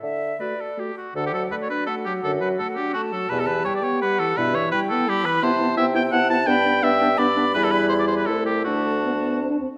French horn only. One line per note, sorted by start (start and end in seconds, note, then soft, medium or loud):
0.39 0.53 A3 soft
0.77 0.91 A3 soft
1.15 1.35 D3 medium
1.33 1.53 F#3 soft
1.51 1.71 A3 soft
1.69 1.89 D4 soft
1.88 2.08 A3 soft
2.06 2.23 F#3 soft
2.24 2.43 D3 medium
2.42 2.61 F#3 soft
2.60 2.79 A3 soft
2.77 2.96 D4 soft
2.95 3.14 A3 medium
3.12 3.29 F#3 medium
3.30 3.50 B2 medium
3.48 3.67 E3 medium
3.65 3.85 G3 medium
3.83 4.03 B3 medium
4.02 4.21 G3 medium
4.19 4.36 E3 medium
4.37 4.56 B2 medium
4.55 4.75 E3 medium
4.73 4.92 G3 medium
4.91 5.10 B3 medium
5.08 5.27 G3 medium
5.25 5.42 E3 medium
5.42 5.50 B3 medium
5.60 5.68 B3 medium
5.77 5.85 B3 medium
5.94 6.02 B3 medium
6.12 6.20 B3 medium
6.30 6.38 B3 medium
6.47 6.55 B3 medium
6.65 6.73 B3 medium
6.83 6.91 B3 medium
7.01 7.09 B3 medium
7.18 7.27 B3 medium
7.36 7.45 B3 medium
7.54 8.30 G3 medium
8.28 8.65 A3 medium
8.65 8.99 A3 medium
9.04 9.15 B3 medium
9.14 9.24 A3 soft
9.22 9.42 B3 medium
9.41 9.50 C4 medium
9.50 9.54 D4 medium
9.59 9.68 C4 medium